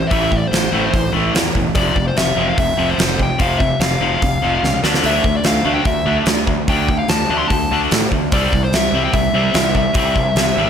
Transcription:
0.07 distorted electric guitar A2 E3 A3, lead electric guitar E5, open hi-hat
0.11 fingered electric bass A1, kick
0.30 distorted electric guitar A2 E3, kick
0.37 lead electric guitar D5
0.47 distorted electric guitar A2, lead electric guitar C5
0.52 fingered electric bass A1, distorted electric guitar E3, snare, open hi-hat
0.72 fingered electric bass A1, distorted electric guitar A2 E3 A3
0.92 fingered electric bass A1, distorted electric guitar A2 E3, kick, open hi-hat
0.96 overdriven electric guitar A2
1.12 fingered electric bass A1, distorted electric guitar A2 E3 A3
1.34 fingered electric bass E2, distorted electric guitar A2 E3, snare, open hi-hat
1.55 fingered electric bass E1, distorted electric guitar A2 E3, kick
1.75 fingered electric bass F1, distorted electric guitar F2 C3 F3, lead electric guitar D5, kick, open hi-hat
1.96 fingered electric bass F1, distorted electric guitar F2 C3, kick
2.08 lead electric guitar C5
2.16 fingered electric bass F1, distorted electric guitar F2 C3, lead electric guitar E5, snare, open hi-hat
2.36 fingered electric bass F1, distorted electric guitar F2 C3 F3
2.49 lead electric guitar F5
2.57 fingered electric bass F1, distorted electric guitar F2 C3, lead electric guitar E5, kick, open hi-hat
2.77 fingered electric bass F1, distorted electric guitar F2 C3 F3
2.90 lead electric guitar C5
2.98 fingered electric bass F1, distorted electric guitar F2 C3, snare, open hi-hat
3.18 distorted electric guitar F2 C3, kick
3.23 lead electric guitar G5
3.38 fingered electric bass F1, distorted electric guitar F2 C3 F3, lead electric guitar F5, kick, open hi-hat
3.58 distorted electric guitar F2 C3, lead electric guitar E5, kick
3.80 fingered electric bass F1, distorted electric guitar F2 C3, lead electric guitar F5, snare, open hi-hat
4.01 fingered electric bass F1, distorted electric guitar F2 C3 F3
4.22 fingered electric bass F1, distorted electric guitar F2 C3, kick, open hi-hat
4.42 fingered electric bass F1, distorted electric guitar F2 C3 F3
4.62 fingered electric bass C#2, distorted electric guitar F2 C3, snare
4.83 fingered electric bass D2, distorted electric guitar D3 A3 D4, snare
4.94 snare
5.03 fingered electric bass D2, distorted electric guitar D3 A3 D4, lead electric guitar E5, open hi-hat
5.24 fingered electric bass D2, distorted electric guitar D3 A3, kick
5.36 lead electric guitar D5
5.44 fingered electric bass D2, distorted electric guitar D3 A3, lead electric guitar F5, snare, open hi-hat
5.64 fingered electric bass D2, distorted electric guitar D3 A3 D4
5.75 lead electric guitar G5
5.85 fingered electric bass D2, distorted electric guitar D3 A3, lead electric guitar E5, kick, open hi-hat
6.06 fingered electric bass D2, distorted electric guitar D3 A3 D4
6.26 fingered electric bass D2, distorted electric guitar D3 A3, snare, open hi-hat
6.47 distorted electric guitar D3 A3, kick
6.68 fingered electric bass D2, distorted electric guitar D3 A3 D4, lead electric guitar G5, kick, open hi-hat
6.89 distorted electric guitar D3 A3, kick
6.99 lead electric guitar F5
7.08 fingered electric bass D2, distorted electric guitar D3 A3, lead electric guitar A5, snare, open hi-hat
7.29 fingered electric bass D2, distorted electric guitar D3 A3 D4
7.38 lead electric guitar C6
7.48 fingered electric bass D2, distorted electric guitar D3 A3, lead electric guitar A5, kick, open hi-hat
7.71 fingered electric bass D2, distorted electric guitar D3 A3 D4
7.91 fingered electric bass A2, distorted electric guitar D3 A3, snare, open hi-hat
8.11 fingered electric bass D2, distorted electric guitar D3 A3, kick
8.32 fingered electric bass C2, distorted electric guitar C3 G3 C4, lead electric guitar D5, kick, open hi-hat
8.53 fingered electric bass C2, distorted electric guitar C3 G3, kick
8.64 lead electric guitar C5
8.72 fingered electric bass C2, distorted electric guitar C3 G3, lead electric guitar E5, snare, open hi-hat
8.92 fingered electric bass C2, distorted electric guitar C3 G3 C4
9.04 lead electric guitar G5
9.13 fingered electric bass C2, distorted electric guitar C3 G3, lead electric guitar E5, kick, open hi-hat
9.33 fingered electric bass C2, distorted electric guitar C3 G3 C4
9.54 fingered electric bass C2, distorted electric guitar C3 G3, snare, open hi-hat
9.75 distorted electric guitar C3 G3, lead electric guitar E5, kick
9.94 fingered electric bass C2, distorted electric guitar C3 G3 C4, kick, open hi-hat
10.16 distorted electric guitar C3 G3, kick
10.35 fingered electric bass C2, distorted electric guitar C3 G3, snare, open hi-hat
10.57 fingered electric bass G#1, distorted electric guitar C3 G3 C4

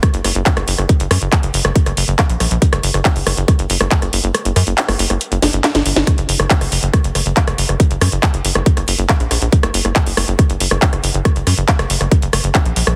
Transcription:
0.03 kick, cross-stick, closed hi-hat
0.14 analog synth bass F#1, closed hi-hat
0.24 analog synth bass F#1, cross-stick, open hi-hat
0.35 analog synth bass F#1, closed hi-hat
0.46 kick, clap, closed hi-hat
0.57 analog synth bass F#1, cross-stick, closed hi-hat
0.68 analog synth bass F#1, open hi-hat
0.78 analog synth bass F#1, cross-stick, closed hi-hat
0.89 kick, closed hi-hat
1.00 analog synth bass F#1, closed hi-hat
1.11 analog synth bass F#2, cross-stick, open hi-hat
1.22 analog synth bass F#1, closed hi-hat
1.32 kick, cross-stick, clap, closed hi-hat
1.43 analog synth bass F#1, closed hi-hat
1.54 analog synth bass F#1, open hi-hat
1.65 analog synth bass F#1, cross-stick, closed hi-hat
1.76 kick, closed hi-hat
1.86 analog synth bass F#1, cross-stick, closed hi-hat
1.97 analog synth bass F#1, open hi-hat
2.08 analog synth bass F#1, closed hi-hat
2.19 kick, cross-stick, clap, closed hi-hat
2.29 analog synth bass A#1, closed hi-hat
2.40 analog synth bass A#1, cross-stick, open hi-hat
2.51 analog synth bass A#1, closed hi-hat
2.62 kick, closed hi-hat
2.73 analog synth bass F#1, cross-stick, closed hi-hat
2.83 analog synth bass F#1, open hi-hat
2.94 analog synth bass F#1, cross-stick, closed hi-hat
3.05 kick, clap, closed hi-hat
3.16 analog synth bass F#1, open hi-hat
3.27 analog synth bass F#1, cross-stick, open hi-hat
3.37 analog synth bass F#1, closed hi-hat
3.48 kick, cross-stick, closed hi-hat
3.59 analog synth bass F#1, closed hi-hat
3.70 analog synth bass F#1, open hi-hat
3.81 analog synth bass F#1, cross-stick, closed hi-hat
3.91 kick, clap, closed hi-hat
4.02 analog synth bass F#1, cross-stick, closed hi-hat
4.13 analog synth bass F#1, open hi-hat
4.24 analog synth bass F#1, closed hi-hat
4.35 cross-stick, closed hi-hat
4.45 analog synth bass F#1, closed hi-hat
4.56 analog synth bass F#2, cross-stick, open hi-hat
4.67 analog synth bass F#1, closed hi-hat
4.78 clap, closed hi-hat
4.88 analog synth bass F#1, cross-stick, open hi-hat
4.99 analog synth bass F#1, open hi-hat
5.10 analog synth bass F#1, cross-stick, closed hi-hat
5.21 closed hi-hat
5.32 analog synth bass F#1, closed hi-hat
5.42 analog synth bass F#1, snare, open hi-hat
5.53 analog synth bass F#1, closed hi-hat
5.64 snare, clap, closed hi-hat
5.75 analog synth bass G1, snare, closed hi-hat
5.86 analog synth bass G1, open hi-hat
5.96 analog synth bass G1, snare, closed hi-hat
6.07 kick, cross-stick, closed hi-hat
6.18 analog synth bass F#1, closed hi-hat
6.29 analog synth bass F#1, open hi-hat
6.40 analog synth bass F#1, cross-stick, closed hi-hat
6.50 kick, clap, closed hi-hat
6.61 analog synth bass F#1, cross-stick, open hi-hat
6.72 analog synth bass F#1, open hi-hat
6.83 analog synth bass F#1, closed hi-hat
6.94 kick, cross-stick, closed hi-hat
7.04 analog synth bass F#1, closed hi-hat
7.15 analog synth bass F#1, cross-stick, open hi-hat
7.26 analog synth bass F#1, closed hi-hat
7.37 kick, clap, closed hi-hat
7.48 analog synth bass F#1, cross-stick, closed hi-hat
7.58 analog synth bass F#1, open hi-hat
7.69 analog synth bass F#1, cross-stick, closed hi-hat
7.80 kick, closed hi-hat
7.91 analog synth bass F#1, closed hi-hat
8.01 analog synth bass F#2, cross-stick, open hi-hat
8.12 analog synth bass F#1, closed hi-hat
8.23 kick, cross-stick, clap, closed hi-hat
8.34 analog synth bass F#1, closed hi-hat
8.45 analog synth bass F#1, open hi-hat
8.55 analog synth bass F#1, cross-stick, closed hi-hat
8.66 kick, closed hi-hat
8.77 analog synth bass F#1, cross-stick, closed hi-hat
8.88 analog synth bass F#1, open hi-hat
8.99 analog synth bass F#1, closed hi-hat
9.09 kick, cross-stick, clap, closed hi-hat
9.20 analog synth bass A#1, closed hi-hat
9.31 analog synth bass A#1, cross-stick, open hi-hat
9.42 analog synth bass A#1, closed hi-hat
9.52 kick, closed hi-hat
9.63 analog synth bass F#1, cross-stick, closed hi-hat
9.74 analog synth bass F#1, open hi-hat
9.85 analog synth bass F#1, cross-stick, closed hi-hat
9.96 kick, clap, closed hi-hat
10.06 analog synth bass F#1, open hi-hat
10.17 analog synth bass F#1, cross-stick, open hi-hat
10.28 analog synth bass F#1, closed hi-hat
10.39 kick, cross-stick, closed hi-hat
10.50 analog synth bass F#1, closed hi-hat
10.60 analog synth bass F#1, open hi-hat
10.71 analog synth bass F#1, cross-stick, closed hi-hat
10.82 kick, clap, closed hi-hat
10.93 analog synth bass F#1, cross-stick, closed hi-hat
11.04 analog synth bass F#1, open hi-hat
11.14 analog synth bass F#1, closed hi-hat
11.25 kick, cross-stick, closed hi-hat
11.36 analog synth bass F#1, closed hi-hat
11.47 analog synth bass F#2, cross-stick, open hi-hat
11.58 analog synth bass F#1, closed hi-hat
11.68 kick, clap, closed hi-hat
11.79 analog synth bass F#1, cross-stick, closed hi-hat
11.90 analog synth bass F#1, open hi-hat
12.01 analog synth bass F#1, cross-stick, closed hi-hat
12.12 kick, closed hi-hat
12.22 analog synth bass F#1, closed hi-hat
12.33 analog synth bass F#1, cross-stick, open hi-hat
12.44 analog synth bass F#1, closed hi-hat
12.55 kick, cross-stick, clap, closed hi-hat
12.65 analog synth bass A#1, closed hi-hat
12.76 analog synth bass A#1, open hi-hat
12.87 analog synth bass A#1, cross-stick, closed hi-hat

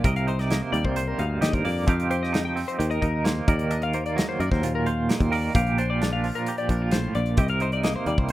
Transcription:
0.04 picked electric bass C2, clean electric guitar C3 A#4 D#5, kick, closed hi-hat
0.16 clean electric guitar F5, closed hi-hat
0.27 clean electric guitar D#4 C5, closed hi-hat
0.39 clean electric guitar D5, snare, closed hi-hat
0.50 clean electric guitar A#3 D#5, snare, closed hi-hat
0.62 clean electric guitar C5
0.72 picked electric bass D#2, clean electric guitar G3 D5, closed hi-hat
0.85 picked electric bass C2, clean electric guitar C5, kick
0.96 clean electric guitar C5, closed hi-hat
1.08 clean electric guitar A#4
1.18 picked electric bass D2, clean electric guitar G2 D#4 F5, closed hi-hat
1.41 picked electric bass D#2, clean electric guitar G4 D#5, snare, closed hi-hat
1.53 clean electric guitar A#4 C5, kick, closed hi-hat
1.65 picked electric bass F2, clean electric guitar A#3 D5, open hi-hat
1.87 picked electric bass F2, clean electric guitar F3 C4 D#4 G4 F5, kick, closed hi-hat
2.00 closed hi-hat
2.10 clean electric guitar G4 C5, closed hi-hat
2.23 clean electric guitar D#5, snare
2.33 clean electric guitar D#4, snare, closed hi-hat
2.45 clean electric guitar G5
2.56 clean electric guitar C4, open hi-hat
2.68 clean electric guitar C5, closed hi-hat
2.79 picked electric bass D#2, clean electric guitar D#3 G4, closed hi-hat
2.90 clean electric guitar A#4 D#5, closed hi-hat
3.02 picked electric bass D#2, clean electric guitar D#4 A#4, kick, closed hi-hat
3.24 clean electric guitar A#3 C5, snare, closed hi-hat
3.48 picked electric bass D#2, clean electric guitar D#3 A#4 D5, kick, closed hi-hat
3.59 closed hi-hat
3.70 clean electric guitar D4 D#5, closed hi-hat
3.82 clean electric guitar F4 F5, closed hi-hat
3.93 clean electric guitar A#3 C5, closed hi-hat
4.06 clean electric guitar D5, closed hi-hat
4.16 clean electric guitar F#3 D#5, snare, closed hi-hat
4.29 clean electric guitar C5
4.40 picked electric bass F#2, clean electric guitar A#4 D5, closed hi-hat
4.52 picked electric bass D#2, clean electric guitar C5, kick, snare
4.63 clean electric guitar A#2 F4, closed hi-hat
4.75 clean electric guitar A#4
4.86 clean electric guitar C5 F5, closed hi-hat
5.09 clean electric guitar A#3 D#5, snare, closed hi-hat
5.20 picked electric bass D#2, clean electric guitar C5, kick, closed hi-hat
5.31 clean electric guitar D#3 A#4 D5, open hi-hat
5.54 picked electric bass A#1, clean electric guitar A#2 G4 F5, kick, closed hi-hat
5.67 closed hi-hat
5.78 clean electric guitar D4 C5, closed hi-hat
5.90 clean electric guitar F4 D5
6.02 clean electric guitar D4, snare, closed hi-hat
6.13 clean electric guitar F5
6.24 clean electric guitar F3, open hi-hat
6.35 clean electric guitar A#4, closed hi-hat
6.46 clean electric guitar G4, closed hi-hat
6.58 clean electric guitar D5, closed hi-hat
6.69 picked electric bass A#1, clean electric guitar A#2 D4 A#4, kick, closed hi-hat
6.82 clean electric guitar F4
6.91 clean electric guitar A2 C5, snare, closed hi-hat
7.15 picked electric bass A#1, clean electric guitar A#2 D5, closed hi-hat
7.26 closed hi-hat
7.37 picked electric bass C2, clean electric guitar C3 G4 D#5, kick, closed hi-hat
7.48 clean electric guitar A#4 F5, closed hi-hat
7.60 clean electric guitar D#4 C5, closed hi-hat
7.72 clean electric guitar D5, closed hi-hat
7.83 clean electric guitar A#3 D#5, snare, closed hi-hat
7.96 clean electric guitar C5
8.06 picked electric bass D#2, clean electric guitar G3 D5, closed hi-hat
8.18 picked electric bass C2, clean electric guitar C5, kick
8.29 closed hi-hat

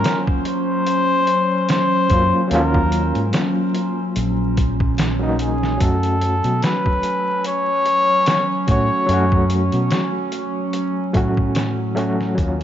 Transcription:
Already playing: reed electric piano F#3 A#3 C#4 F4, ambient pad F#3 C#4, muted trumpet A#4
0.04 snare, closed hi-hat
0.27 kick
0.45 muted trumpet C5, closed hi-hat
0.86 closed hi-hat
1.27 closed hi-hat
1.69 muted trumpet C5, snare, closed hi-hat
2.09 fingered electric bass F#2, reed electric piano F#3 A#3 C#4, kick, closed hi-hat
2.13 reed electric piano F4
2.47 fingered electric bass D#2, reed electric piano F#3 A#3, closed hi-hat
2.53 reed electric piano C#4 F4, muted trumpet A#4
2.74 kick
2.92 closed hi-hat
3.15 fingered electric bass G#2, closed hi-hat
3.33 snare, closed hi-hat
3.75 closed hi-hat
4.16 fingered electric bass A#1, closed hi-hat
4.57 kick, closed hi-hat
4.80 kick
4.98 snare, closed hi-hat
5.19 reed electric piano F#3 A#3 C#4 D#4
5.39 muted trumpet G#4, closed hi-hat
5.63 snare
5.78 fingered electric bass F#2, reed electric piano F#3 A3, ambient pad F#3 C#4, muted trumpet A4, kick, closed hi-hat
5.83 reed electric piano C#4 F#4
6.03 closed hi-hat
6.21 closed hi-hat
6.44 fingered electric bass B2, closed hi-hat
6.62 muted trumpet B4, snare, closed hi-hat
6.86 kick
7.03 closed hi-hat
7.44 muted trumpet C#5, closed hi-hat
7.86 closed hi-hat
8.26 snare, closed hi-hat
8.67 fingered electric bass A2, reed electric piano F#3 A3 C#4 F#4, kick, closed hi-hat
8.71 muted trumpet C#5
9.06 fingered electric bass F#2, reed electric piano F#3 A3, closed hi-hat
9.11 reed electric piano C#4 F#4
9.32 kick
9.50 closed hi-hat
9.72 fingered electric bass B2, closed hi-hat
9.91 snare, closed hi-hat
10.32 closed hi-hat
10.73 closed hi-hat
11.13 fingered electric bass A2, reed electric piano F#3 A3 C#4 F#4, kick, closed hi-hat
11.37 kick
11.55 snare, closed hi-hat
11.95 reed electric piano F#3 A3 C#4 F#4, closed hi-hat
12.21 snare
12.35 fingered electric bass D#2, reed electric piano F#3 A#3, kick, closed hi-hat
12.40 reed electric piano C#4 F4

